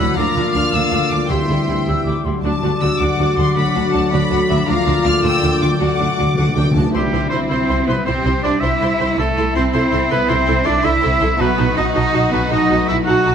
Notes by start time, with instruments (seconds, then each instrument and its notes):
Already playing: trombone section D3 F#3, harp F#3 D5, french horn section D4 F#4, oboe B4, violin section B5, flute E6
0.00 harp D3, clarinet E4, violin section F#5
0.04 harp F3
0.09 harp D4
0.13 harp D5, oboe D5, violin section F5 A#5
0.17 double bass section D2, cello section D2, trombone section D3 A#3, french horn section D4 F4, viola section D4 F4, clarinet F4, flute D6
0.36 double bass section D2, cello section D2, viola section D4 F4
0.54 cello section D2, double bass section D2, viola section D4 F4, violin section F6
0.72 cello section D2, double bass section D2, viola section D4 F4, oboe D5, flute D6, violin section E6
0.92 double bass section D2, cello section D2, viola section D4 F4
1.11 double bass section D2, cello section D2, harp D3, viola section D4 F4, violin section D6
1.17 harp G3
1.22 harp E4
1.26 double bass section D2, cello section D2, french horn section C4, viola section E4 G4, clarinet G4, harp C5, violin section G5 C6, flute C6
1.30 timpani D3, trombone section E3 G3, french horn section E4, oboe E5
1.49 cello section D2, double bass section D2, viola section E4 G4
1.68 cello section D2, double bass section D2, viola section E4 G4
1.87 cello section D2, double bass section D2, viola section E4 G4, flute E6
2.05 double bass section D2, cello section D2, viola section E4 G4, flute D6
2.24 double bass section D2, cello section D2, harp D3, viola section E4 G4, flute C6
2.31 harp F#3
2.35 harp D4
2.39 double bass section D2, trombone section D3, french horn section D4 F#4, clarinet F#4, harp D5, violin section A5
2.44 cello section D2, viola section D4 F#4, oboe D5, flute D6
2.62 cello section D2, double bass section D2, viola section D4 F#4
2.81 double bass section D2, cello section D2, viola section D4 F#4, violin section E6
3.00 double bass section D2, cello section D2, viola section D4 F#4, violin section F#5 D6
3.18 double bass section D2, cello section D2, viola section D4 F#4
3.37 double bass section D2, cello section D2, harp D3, viola section D4 F#4, violin section C6
3.43 harp F#3
3.47 harp D4
3.52 harp D5
3.56 double bass section D2, cello section D2, trombone section F#3, viola section D4 F#4, violin section F#5 B5
3.75 double bass section D2, cello section D2, viola section D4 F#4
3.93 cello section D2, double bass section D2, viola section D4 F#4, violin section A5
4.11 cello section D2, double bass section D2, viola section D4 F#4, violin section D5 B5
4.31 cello section D2, double bass section D2, viola section D4 F#4, violin section F#5
4.49 cello section D2, double bass section D2, harp D3, viola section D4 F#4, violin section E5
4.54 harp F3
4.59 harp D4
4.63 viola section D4 F4, harp D5, violin section A#5, flute D6
4.67 double bass section D2, cello section D2, trombone section D3 A#3, french horn section D4 F4, clarinet F4, oboe D5, violin section F5
4.86 double bass section D2, cello section D2, viola section D4 F4
5.04 double bass section D2, cello section D2, viola section D4 F4, violin section F6
5.23 double bass section D2, cello section D2, viola section D4 F4, violin section G5 E6
5.42 double bass section D2, cello section D2, viola section D4 F4
5.61 double bass section D2, cello section D2, harp D3, viola section D4 F4, violin section D6
5.67 harp F#3
5.71 harp D4
5.76 french horn section F#4, clarinet F#4, harp D5
5.80 cello section D2, double bass section D2, timpani D3, trombone section A3, viola section D4 F#4, violin section F#5 D6
5.88 timpani D3
5.95 cello section D2, timpani D3
6.00 double bass section D2, timpani D3, viola section D4 F#4
6.11 timpani D3
6.18 cello section D2, double bass section D2, timpani D3, viola section D4 F#4
6.27 timpani D3
6.34 cello section D2, double bass section D2, timpani D3, viola section D4 F#4, violin section F#5
6.42 timpani D3
6.49 timpani D3
6.56 cello section D2, double bass section D2, timpani D3, viola section D4 F#4, violin section G5
6.64 timpani D3
6.71 cello section D2, double bass section D2, timpani D3
6.76 timpani D3, viola section D4 F#4, violin section A5
6.93 double bass section C2, harp C3, cello section G3, violin section E4 C6, viola section E4 C5, oboe G4
7.03 harp C4
7.13 double bass section C2, harp G3, viola section E4 C5, violin section C6
7.22 harp G4
7.30 double bass section C2, cello section C4, viola section E4 C5, oboe C5, harp E5, violin section C6
7.41 harp G4
7.50 double bass section C2, cello section C4, viola section E4 C5, oboe C5, harp G5, violin section C6
7.59 harp E6
7.68 double bass section C2, viola section E4 C5, harp G5, violin section C6
7.78 harp G4
7.87 double bass section C2, cello section B3, viola section E4 C5, oboe B4, harp E5, violin section C6
7.96 harp G3
8.06 double bass section C2, harp C3, cello section C4, viola section E4 C5, violin section G4 C6, oboe C5
8.16 harp C4
8.24 double bass section C2, harp G3, viola section E4 C5, violin section C6
8.34 harp G4
8.43 double bass section C2, cello section D4, viola section E4 C5, oboe D5, harp E5, violin section C6
8.53 harp G4
8.61 double bass section C2, violin section C4 C6, cello section E4, viola section E4 C5, oboe E5, harp G5
8.71 harp E6
8.81 double bass section C2, viola section E4 C5, harp G5, violin section C6
8.90 harp G4
9.00 double bass section C2, viola section E4 C5, violin section C6
9.09 harp G3
9.17 double bass section C2, harp C3, cello section A3, violin section E4 C6, viola section E4 A4, oboe A4
9.28 harp A3
9.37 double bass section C2, harp C4, viola section E4 A4, violin section C6
9.46 harp E4
9.55 double bass section C2, cello section C4, viola section E4 A4, oboe C5, harp E5, violin section C6
9.65 harp C5
9.73 double bass section C2, cello section C4, viola section E4 A4, oboe C5, harp E5, violin section C6
9.84 harp E6
9.92 double bass section C2, viola section E4 A4, harp E5, violin section C6
10.02 harp C5
10.10 double bass section C2, cello section B3, viola section E4 A4, oboe B4, harp E5, violin section C6
10.20 harp C4
10.28 double bass section C2, harp C3, cello section C4, viola section E4 A4, oboe C5, violin section C6
10.39 harp A3
10.46 double bass section C2, harp C4, viola section E4 A4, violin section C6
10.57 harp E4
10.64 double bass section C2, cello section D4, viola section E4 A4, oboe D5, harp E5, violin section C6
10.76 harp C5
10.82 double bass section C2, violin section D4 C6, viola section E4 A4, cello section E4, harp E5, oboe E5
10.94 harp E6
11.02 double bass section C2, violin section C4 C6, viola section E4 A4, harp E5
11.12 harp C5
11.19 double bass section C2, viola section E4 A4, violin section E4 C6, harp E5
11.30 harp C4
11.38 double bass section B1, harp B2, cello section B3, viola section D#4 F#4, violin section F#4 A5, oboe B4
11.49 harp F#3
11.57 double bass section B1, harp A3, viola section D#4 F#4, violin section A5
11.68 harp F#4
11.76 double bass section B1, viola section D#4 F#4, cello section D#4, oboe D#5, violin section A5
11.87 harp A4
11.94 double bass section B1, viola section D#4 F#4, cello section D#4, oboe D#5, harp F#5, violin section A5
12.13 double bass section B1, viola section D#4 F#4, violin section A5
12.24 harp A4
12.32 double bass section B1, cello section B3, viola section D#4 F#4, oboe B4, harp D#5, violin section A5
12.43 harp A3
12.49 double bass section B1, harp B2, viola section D#4 F#4, cello section D#4, oboe D#5, violin section A5
12.61 harp F#3
12.69 double bass section B1, harp A3, viola section D#4 F#4, violin section A5
12.80 harp F#4
12.88 double bass section B1, viola section D#4 F#4, cello section E4, harp D#5, oboe E5, violin section A5
12.99 harp A4
13.06 double bass section B1, viola section D#4 F#4, violin section D#4 A5, cello section F#4, oboe F#5, harp F#5
13.18 harp D#6
13.25 double bass section B1, viola section D#4 F#4, harp F#5, violin section A5